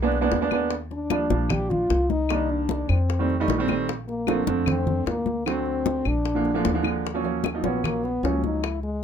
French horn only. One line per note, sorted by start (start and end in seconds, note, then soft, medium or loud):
0.93 1.53 D4 loud
1.52 1.72 G4 loud
1.70 2.11 F4 loud
2.10 2.52 D#4 medium
2.50 2.90 D4 medium
2.89 3.48 C4 medium
4.08 4.45 A#3 medium
4.68 5.04 C4 medium
5.08 5.44 A#3 medium
5.47 6.09 C4 medium
6.07 6.86 D4 loud
7.64 7.86 B3 medium
7.84 8.06 A#3 medium
8.04 8.26 B3 medium
8.24 8.44 C#4 medium
8.45 8.66 D#4 medium
8.64 8.83 E4 medium
8.83 9.04 G#3 medium